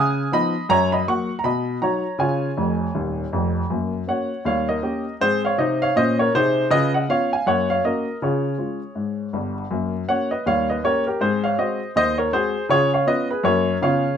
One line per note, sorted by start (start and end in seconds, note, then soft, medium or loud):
0.00 0.26 C#3 medium
0.00 0.30 G#5 medium
0.00 0.27 D#6 loud
0.32 0.53 F3 medium
0.32 0.53 B3 medium
0.32 0.53 D#4 medium
0.32 0.68 D#5 medium
0.32 0.65 B5 loud
0.69 1.01 F#2 medium
0.69 0.91 C#5 medium
0.69 0.89 A#5 loud
0.92 1.07 D#5 medium
0.92 1.05 B5 medium
1.08 1.28 F#3 soft
1.08 1.28 A#3 medium
1.08 1.28 F#4 medium
1.08 1.38 F#5 medium
1.08 1.35 C#6 medium
1.39 1.44 A#5 medium
1.44 1.76 B2 medium
1.44 1.80 D#5 medium
1.44 1.76 B5 medium
1.81 2.02 F#3 soft
1.81 2.03 D#4 soft
1.81 2.03 F#4 soft
1.81 2.18 C#5 medium
1.81 2.14 A#5 medium
2.19 2.49 C#3 medium
2.19 2.50 F4 medium
2.19 3.52 C#5 medium
2.19 3.35 G#5 medium
2.57 2.85 F1 medium
2.57 2.85 F2 medium
2.95 3.23 D#1 medium
2.95 3.23 D#2 medium
3.33 3.61 F1 medium
3.33 3.61 F2 medium
3.70 4.02 F#2 medium
3.70 3.92 A#3 soft
4.07 4.28 A#3 soft
4.07 4.28 C#4 soft
4.07 4.29 F#4 soft
4.07 4.44 C#5 medium
4.07 4.40 F#5 medium
4.45 4.77 D#2 medium
4.45 4.67 G3 soft
4.45 4.68 C#5 medium
4.45 4.65 F5 medium
4.69 5.18 A#4 medium
4.69 5.13 D#5 medium
4.83 5.03 A#3 soft
4.83 5.03 C#4 soft
4.83 5.04 G4 medium
5.21 5.51 G#2 medium
5.21 5.51 C4 medium
5.21 5.43 G#4 medium
5.21 5.40 C5 loud
5.45 5.59 C#5 medium
5.45 5.57 F5 medium
5.58 5.88 C3 medium
5.58 5.89 D#4 medium
5.58 5.80 C5 medium
5.58 5.78 D#5 medium
5.82 5.96 C#5 medium
5.82 5.94 F5 loud
5.96 6.26 A#2 medium
5.96 6.27 C#4 medium
5.96 6.18 C5 medium
5.96 6.16 D#5 loud
6.19 6.34 A#4 medium
6.19 6.32 C#5 medium
6.34 6.64 C3 medium
6.34 6.65 D#4 medium
6.34 6.70 G#4 medium
6.34 6.66 C5 loud
6.70 7.02 C#3 loud
6.70 6.93 F4 medium
6.70 6.93 B4 medium
6.70 6.90 D#5 loud
6.94 7.08 D#5 medium
6.94 7.07 F#5 medium
7.09 7.29 B3 soft
7.09 7.30 C#4 soft
7.09 7.30 F4 soft
7.09 7.31 C#5 medium
7.09 7.28 F5 medium
7.33 7.46 F5 medium
7.33 7.45 G#5 medium
7.46 7.78 F#2 medium
7.46 7.68 A#3 soft
7.46 7.68 C#5 medium
7.46 7.66 F#5 medium
7.70 7.84 C#5 medium
7.70 7.82 F5 medium
7.84 8.04 A#3 soft
7.84 8.05 C#4 soft
7.84 8.05 F#4 soft
7.84 8.20 A#4 medium
7.84 8.16 D#5 medium
8.22 8.53 C#3 medium
8.22 8.44 F4 soft
8.22 9.53 G#4 medium
8.22 9.37 C#5 medium
8.58 8.79 G#3 soft
8.58 8.79 C#4 soft
8.58 8.79 F4 soft
8.95 9.27 G#2 medium
9.33 9.63 G1 medium
9.33 9.63 G2 medium
9.71 10.02 F#2 medium
9.71 9.92 A#3 soft
10.08 10.28 A#3 soft
10.08 10.29 C#4 soft
10.08 10.29 F#4 soft
10.08 10.30 C#5 medium
10.08 10.28 F#5 medium
10.31 10.45 B4 medium
10.31 10.43 D#5 medium
10.46 10.78 D#2 medium
10.46 10.68 G3 medium
10.46 10.68 C#5 medium
10.46 10.66 F5 medium
10.70 10.83 B4 medium
10.70 10.82 D#5 medium
10.84 11.04 A#3 soft
10.84 11.04 C#4 soft
10.84 11.04 G4 medium
10.84 11.05 A#4 medium
10.84 11.03 C#5 medium
11.07 11.20 G4 medium
11.07 11.19 A#4 medium
11.21 11.52 G#2 medium
11.21 11.42 C4 medium
11.21 11.43 G#4 medium
11.21 11.40 C5 medium
11.44 11.58 C#5 medium
11.44 11.56 F5 medium
11.58 11.78 G#3 soft
11.58 11.79 C4 soft
11.58 11.79 F#4 soft
11.58 11.94 C5 medium
11.58 11.90 D#5 medium
11.96 12.27 D#2 medium
11.96 12.18 C5 medium
11.96 12.15 D#5 loud
12.18 12.32 A#4 medium
12.18 12.30 C#5 medium
12.32 12.53 G#3 medium
12.32 12.53 C4 medium
12.32 12.53 F#4 medium
12.32 12.68 G#4 medium
12.32 12.65 C5 loud
12.69 13.01 C#3 medium
12.69 12.91 F4 medium
12.69 12.92 G#4 medium
12.69 12.89 C#5 loud
12.94 13.07 C#5 medium
12.94 13.06 F5 medium
13.06 13.27 B3 soft
13.06 13.28 C#4 medium
13.06 13.27 F4 medium
13.06 13.29 B4 medium
13.06 13.27 D#5 loud
13.31 13.45 G#4 medium
13.31 13.43 B4 medium
13.43 13.76 F#2 medium
13.43 13.45 A#3 soft
13.43 13.66 A#3 medium
13.43 13.65 C#4 soft
13.43 13.65 F#4 soft
13.43 13.80 A#4 medium
13.43 13.76 C#5 medium
13.81 14.14 C#3 medium
13.81 14.02 B3 soft
13.81 14.03 C#4 soft
13.81 14.04 F4 medium
13.81 14.03 G#4 soft
13.81 14.17 C#5 medium
13.81 14.14 F5 medium